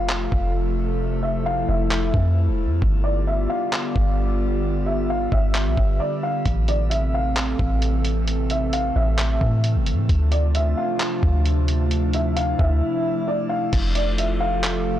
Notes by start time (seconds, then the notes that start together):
Already playing: F1 C3 F3 A3 F4 A4 F5
0.09 clap
0.32 F1, kick
1.00 E4
1.23 E5
1.46 F5
1.69 F1 E5
1.91 clap
2.14 F2, kick
2.48 E1
2.65 F2
2.82 G1 D3 G3 B3 F4 G4, kick
3.04 D5
3.27 E5
3.50 F5
3.73 clap
3.96 G1, kick
4.86 E5
5.10 F5
5.32 G1 E5, kick
5.55 clap
5.66 B1
5.77 G1, kick
6.00 D5
6.23 F5
6.46 A1 C3 E3 A3 C4 A4, kick, closed hi-hat
6.68 D5, closed hi-hat
6.90 E5, closed hi-hat
7.14 F5
7.37 clap, closed hi-hat
7.59 A1, kick
7.82 closed hi-hat
8.05 closed hi-hat
8.27 closed hi-hat
8.50 E5, closed hi-hat
8.73 F5, closed hi-hat
8.96 A1 E5
9.18 clap, closed hi-hat
9.41 A2, kick
9.64 closed hi-hat
9.75 G1
9.86 closed hi-hat
9.92 A2
10.09 D2 F3 D4 F4, kick, closed hi-hat
10.32 D5, closed hi-hat
10.55 E5, closed hi-hat
10.77 F5
11.00 clap, closed hi-hat
11.23 D2, kick
11.46 closed hi-hat
11.68 closed hi-hat
11.91 E4, closed hi-hat
12.13 E5, closed hi-hat
12.36 F5, closed hi-hat
12.59 D2 E5, kick
13.28 D5
13.49 F5
13.73 F1 C3 F3 A3 F4 A4, kick, closed hi-hat, crash
13.95 D5, closed hi-hat
14.18 E5, closed hi-hat
14.40 F5
14.64 clap, closed hi-hat